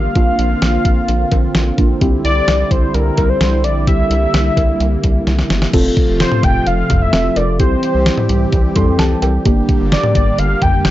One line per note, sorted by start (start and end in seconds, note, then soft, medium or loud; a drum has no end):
0.00 0.14 D3 medium
0.00 0.14 G3 medium
0.00 0.14 A#3 medium
0.00 1.98 A#3 medium
0.00 0.14 D4 soft
0.00 1.98 F4 medium
0.00 0.15 G4 medium
0.00 1.78 F5 loud
0.15 0.32 A#1 loud
0.15 5.69 D3 medium
0.15 1.75 A#3 medium
0.15 3.84 C4 medium
0.15 1.75 D4 medium
0.15 1.75 F4 medium
0.15 kick loud
0.15 closed hi-hat medium
0.39 0.55 A#1 loud
0.39 closed hi-hat medium
0.62 0.78 A#1 loud
0.62 snare loud
0.62 closed hi-hat medium
0.85 1.01 A#1 loud
0.85 kick loud
0.85 closed hi-hat medium
1.08 1.25 A#1 loud
1.08 closed hi-hat medium
1.31 1.48 A#1 loud
1.31 kick medium
1.31 closed hi-hat medium
1.31 cowbell medium
1.55 1.71 A#1 loud
1.55 snare loud
1.55 closed hi-hat medium
1.78 1.94 A#1 medium
1.78 2.01 A#3 medium
1.78 2.01 D4 medium
1.78 2.01 F4 medium
1.78 kick medium
1.78 closed hi-hat medium
2.01 2.18 C2 loud
2.01 5.70 G3 medium
2.01 3.84 C4 medium
2.01 5.70 E4 medium
2.01 3.84 E4 medium
2.01 3.84 G4 medium
2.01 kick loud
2.01 closed hi-hat medium
2.24 2.41 C2 loud
2.24 2.73 D5 loud
2.24 closed hi-hat medium
2.48 2.64 C2 loud
2.48 snare loud
2.48 closed hi-hat medium
2.71 2.87 C2 loud
2.71 2.96 C5 medium
2.71 kick loud
2.71 closed hi-hat medium
2.94 3.11 C2 loud
2.94 3.31 A#4 medium
2.94 closed hi-hat medium
3.17 3.34 C2 loud
3.17 kick medium
3.17 closed hi-hat medium
3.17 cowbell medium
3.29 3.66 C5 loud
3.41 3.66 C2 loud
3.41 snare loud
3.41 closed hi-hat medium
3.64 3.89 A#1 medium
3.64 3.87 D5 loud
3.64 closed hi-hat medium
3.87 4.04 C2 loud
3.87 5.72 A#3 medium
3.87 5.70 C4 medium
3.87 5.70 E4 medium
3.87 5.70 G4 medium
3.87 5.23 E5 loud
3.87 kick loud
3.87 closed hi-hat medium
4.10 4.27 C2 loud
4.10 closed hi-hat medium
4.34 4.50 C2 loud
4.34 snare loud
4.34 closed hi-hat medium
4.57 4.73 C2 loud
4.57 kick medium
4.57 closed hi-hat medium
4.57 cowbell medium
4.80 4.97 C2 loud
4.80 closed hi-hat medium
5.04 5.20 C2 loud
5.04 kick medium
5.04 closed hi-hat medium
5.27 5.43 C2 loud
5.27 snare medium
5.27 closed hi-hat medium
5.39 snare medium
5.50 5.66 G1 loud
5.50 snare loud
5.50 closed hi-hat medium
5.62 snare loud
5.73 5.90 F1 loud
5.73 7.58 C3 medium
5.73 7.58 F3 medium
5.73 7.58 A3 medium
5.73 7.10 C4 medium
5.73 7.58 F4 medium
5.73 7.10 F4 medium
5.73 7.10 A4 medium
5.73 kick loud
5.73 closed hi-hat medium
5.73 crash loud
5.97 kick medium
5.97 closed hi-hat medium
6.08 6.25 F1 loud
6.20 6.45 C5 loud
6.20 snare loud
6.20 closed hi-hat medium
6.32 mid tom loud
6.43 6.59 F1 loud
6.43 6.68 G5 loud
6.43 kick loud
6.43 closed hi-hat medium
6.67 6.83 F1 loud
6.67 7.03 F5 loud
6.67 closed hi-hat medium
6.90 7.06 F1 loud
6.90 kick medium
6.90 closed hi-hat medium
6.90 mid tom loud
7.02 7.38 E5 loud
7.13 7.29 F1 loud
7.13 7.59 C4 medium
7.13 7.60 F4 soft
7.13 7.60 A4 medium
7.13 snare loud
7.13 closed hi-hat medium
7.36 7.61 F1 loud
7.36 7.59 D5 medium
7.36 closed hi-hat medium
7.36 cowbell medium
7.60 7.76 C2 loud
7.60 9.44 E3 medium
7.60 9.44 G3 medium
7.60 9.44 C4 medium
7.60 8.74 C4 medium
7.60 8.74 E4 medium
7.60 9.44 G4 medium
7.60 8.74 G4 medium
7.60 8.49 C5 medium
7.60 kick loud
7.60 closed hi-hat medium
7.83 closed hi-hat medium
7.95 8.11 C2 medium
8.06 snare loud
8.06 closed hi-hat medium
8.18 mid tom loud
8.29 8.46 C2 loud
8.29 closed hi-hat medium
8.52 8.69 C2 loud
8.52 kick loud
8.52 closed hi-hat medium
8.76 8.92 C2 loud
8.76 9.46 C4 medium
8.76 9.46 E4 medium
8.76 9.46 A4 medium
8.76 8.98 C6 medium
8.76 kick medium
8.76 closed hi-hat medium
8.76 mid tom loud
8.99 9.15 C2 medium
8.99 9.21 A5 medium
8.99 snare loud
8.99 closed hi-hat medium
9.22 9.39 C2 loud
9.22 9.44 G5 medium
9.22 closed hi-hat medium
9.22 cowbell medium
9.45 9.62 G1 loud
9.45 10.91 D3 medium
9.45 10.91 G3 medium
9.45 10.91 A#3 medium
9.45 10.91 D4 medium
9.45 10.91 G4 medium
9.45 kick loud
9.45 closed hi-hat medium
9.69 kick medium
9.69 closed hi-hat medium
9.81 9.97 G1 medium
9.92 10.14 D5 medium
9.92 snare loud
9.92 closed hi-hat medium
10.04 mid tom loud
10.15 10.32 G1 loud
10.15 10.40 D5 loud
10.15 kick loud
10.15 closed hi-hat medium
10.38 10.55 G1 loud
10.38 10.64 F5 loud
10.38 closed hi-hat medium
10.62 10.78 G1 loud
10.62 10.85 G5 loud
10.62 kick medium
10.62 closed hi-hat medium
10.62 mid tom loud
10.85 10.91 G1 loud
10.85 10.91 G5 loud
10.85 snare loud
10.85 closed hi-hat medium